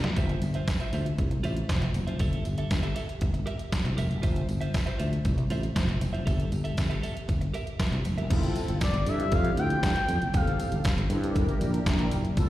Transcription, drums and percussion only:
0.04 snare, closed hi-hat
0.16 kick, closed hi-hat, tambourine
0.29 closed hi-hat
0.42 closed hi-hat, tambourine
0.54 closed hi-hat
0.68 kick, snare, clap, closed hi-hat, tambourine
0.80 closed hi-hat
0.93 closed hi-hat, tambourine
1.06 closed hi-hat
1.18 kick, closed hi-hat
1.31 closed hi-hat
1.44 closed hi-hat, tambourine
1.57 closed hi-hat
1.69 kick, snare, clap, closed hi-hat, tambourine
1.82 closed hi-hat
1.94 closed hi-hat, tambourine
2.07 closed hi-hat
2.19 kick, closed hi-hat, tambourine
2.33 closed hi-hat
2.45 closed hi-hat, tambourine
2.58 closed hi-hat
2.71 kick, snare, clap, closed hi-hat, tambourine
2.83 closed hi-hat
2.96 closed hi-hat, tambourine
3.09 closed hi-hat
3.21 kick, closed hi-hat
3.34 closed hi-hat
3.47 closed hi-hat
3.59 closed hi-hat
3.72 kick, snare, clap, closed hi-hat, tambourine
3.85 closed hi-hat
3.98 closed hi-hat, tambourine
4.11 closed hi-hat
4.23 kick, closed hi-hat, tambourine
4.36 closed hi-hat
4.49 closed hi-hat, tambourine
4.61 closed hi-hat
4.74 kick, snare, clap, closed hi-hat, tambourine
4.87 closed hi-hat
5.00 closed hi-hat, tambourine
5.13 closed hi-hat
5.25 kick, closed hi-hat, tambourine
5.38 closed hi-hat
5.50 closed hi-hat, tambourine
5.63 closed hi-hat
5.76 kick, snare, clap, closed hi-hat, tambourine
5.89 closed hi-hat
6.01 closed hi-hat, tambourine
6.15 closed hi-hat
6.27 kick, closed hi-hat, tambourine
6.40 closed hi-hat
6.52 closed hi-hat, tambourine
6.65 closed hi-hat
6.77 kick, snare, clap, closed hi-hat, tambourine
6.91 closed hi-hat
7.03 closed hi-hat, tambourine
7.17 closed hi-hat
7.28 kick, closed hi-hat, tambourine
7.41 closed hi-hat
7.54 closed hi-hat, tambourine
7.67 closed hi-hat
7.80 kick, snare, clap, closed hi-hat, tambourine
7.92 closed hi-hat
8.04 closed hi-hat, tambourine
8.18 closed hi-hat
8.30 kick, closed hi-hat, crash, tambourine
8.43 closed hi-hat
8.56 closed hi-hat, tambourine
8.68 closed hi-hat
8.81 kick, snare, clap, closed hi-hat, tambourine
8.94 closed hi-hat
9.06 closed hi-hat, tambourine
9.20 closed hi-hat
9.31 kick, closed hi-hat, tambourine
9.45 closed hi-hat
9.57 closed hi-hat
9.70 closed hi-hat
9.83 kick, snare, clap, closed hi-hat, tambourine
9.96 closed hi-hat
10.08 closed hi-hat, tambourine
10.22 closed hi-hat
10.33 kick, closed hi-hat, tambourine
10.47 closed hi-hat
10.59 closed hi-hat, tambourine
10.72 closed hi-hat
10.84 kick, snare, clap, closed hi-hat, tambourine
10.98 closed hi-hat
11.10 closed hi-hat, tambourine
11.24 closed hi-hat
11.35 kick, closed hi-hat, tambourine
11.49 closed hi-hat
11.61 closed hi-hat, tambourine
11.74 closed hi-hat
11.86 kick, snare, clap, closed hi-hat, tambourine
11.99 closed hi-hat
12.11 closed hi-hat, tambourine
12.25 closed hi-hat
12.37 kick, closed hi-hat, tambourine

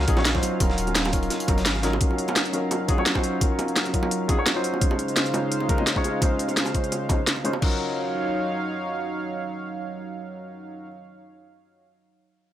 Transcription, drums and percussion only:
0.08 kick, closed hi-hat
0.17 snare, high bongo
0.25 snare, closed hi-hat
0.35 kick, snare
0.43 closed hi-hat, high bongo
0.60 kick, closed hi-hat, high bongo
0.70 snare
0.78 closed hi-hat
0.87 closed hi-hat, high bongo
0.95 snare, closed hi-hat
1.05 snare, closed hi-hat, high bongo
1.13 kick, closed hi-hat
1.23 closed hi-hat
1.30 snare, closed hi-hat, high bongo
1.40 closed hi-hat
1.48 kick, closed hi-hat, high bongo
1.58 snare, closed hi-hat
1.65 snare, closed hi-hat
1.75 snare, high bongo
1.83 snare, closed hi-hat
1.93 high bongo
2.01 kick, closed hi-hat
2.11 high bongo
2.18 closed hi-hat
2.28 closed hi-hat, high bongo
2.36 snare, closed hi-hat
2.45 closed hi-hat
2.53 closed hi-hat, high bongo
2.71 closed hi-hat, high bongo
2.88 kick, closed hi-hat
2.98 high bongo
3.06 snare, closed hi-hat
3.15 kick, high bongo
3.24 closed hi-hat
3.41 kick, closed hi-hat, high bongo
3.59 closed hi-hat, high bongo
3.68 closed hi-hat
3.76 snare, closed hi-hat
3.85 closed hi-hat, high bongo
3.94 kick, closed hi-hat
4.03 high bongo
4.11 closed hi-hat
4.29 kick, closed hi-hat, high bongo
4.46 snare, closed hi-hat, high bongo
4.64 closed hi-hat
4.74 high bongo
4.81 kick, closed hi-hat
4.91 high bongo
4.99 closed hi-hat
5.08 closed hi-hat
5.16 snare, closed hi-hat, high bongo
5.26 closed hi-hat
5.34 closed hi-hat, high bongo
5.52 closed hi-hat
5.60 high bongo
5.69 kick, closed hi-hat
5.78 high bongo
5.87 snare, closed hi-hat
5.96 kick
6.04 closed hi-hat, high bongo
6.22 kick, closed hi-hat, high bongo
6.39 closed hi-hat
6.48 closed hi-hat, high bongo
6.57 snare, closed hi-hat
6.66 closed hi-hat, high bongo
6.74 kick, closed hi-hat
6.84 closed hi-hat
6.92 closed hi-hat, high bongo
7.09 kick, closed hi-hat, high bongo
7.27 snare, closed hi-hat
7.36 high bongo
7.45 closed hi-hat
7.53 high bongo
7.62 kick, crash

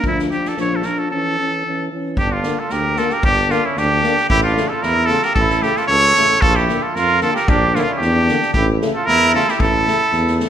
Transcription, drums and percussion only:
0.04 kick
0.19 snare
0.31 snare
0.45 snare
0.57 snare
0.82 snare
2.17 kick
2.43 snare
2.70 snare
2.96 snare
3.10 snare
3.23 kick
3.50 snare
3.77 snare
4.03 snare
4.17 snare
4.30 kick
4.57 snare
4.83 snare
5.09 snare
5.22 snare
5.36 kick
5.50 snare
5.62 snare
5.76 snare
5.89 snare
6.16 snare
6.31 snare
6.42 kick
6.68 snare
6.96 snare
7.21 snare
7.36 snare
7.48 kick
7.75 snare
8.01 snare
8.28 snare
8.42 snare
8.54 kick
8.81 snare
9.08 snare
9.48 snare
9.60 kick
9.88 snare
10.13 snare
10.27 snare
10.40 snare

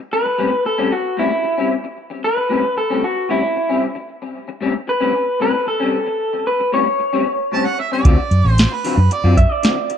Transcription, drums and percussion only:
8.05 kick, closed hi-hat
8.31 closed hi-hat
8.58 snare, closed hi-hat
8.85 open hi-hat
9.11 closed hi-hat
9.37 kick, closed hi-hat
9.63 snare, closed hi-hat
9.90 closed hi-hat

